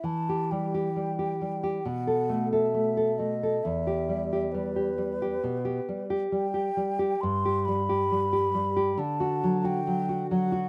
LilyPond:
<<
  \new Staff \with { instrumentName = "Flute" } { \time 4/4 \key e \minor \tempo 4 = 67 a''8 g''4. fis''8. e''8. dis''8 | e''4 b'4.~ b'16 r16 g''4 | c'''8 b''4. a''8. g''8. fis''8 | }
  \new Staff \with { instrumentName = "Nylon-string guitar" } { \time 4/4 \key e \minor e16 g'16 g16 g'16 g16 g'16 g16 g'16 b,16 a'16 a16 a'16 a16 a'16 a16 a'16 | e,16 g'16 g16 g'16 g16 g'16 g16 g'16 b,16 g'16 g16 g'16 g16 g'16 g16 g'16 | g,16 g'16 g16 g'16 g16 g'16 g16 g'16 d16 fis'16 fis16 fis'16 fis16 fis'16 fis16 fis'16 | }
>>